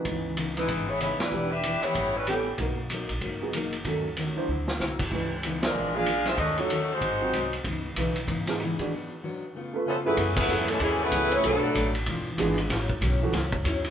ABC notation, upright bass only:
X:1
M:4/4
L:1/8
Q:"Swing" 1/4=190
K:C#m
V:1 name="Upright bass" clef=bass
C,,4 G,,,3 F,,, | E,,,3 z A,,,4 | B,,,3 ^A,,, F,,,4 | D,,3 z =D,,2 =C,,2 |
C,,4 ^A,,,4 | D,,4 G,,,2 ^B,,,2 | C,,2 B,,,2 G,,3 z | z8 |
F,,2 E,,2 D,,2 C,,2 | B,,,2 A,,,2 E,,,2 G,,,2 | A,,,2 B,,,2 C,,2 D,,2 |]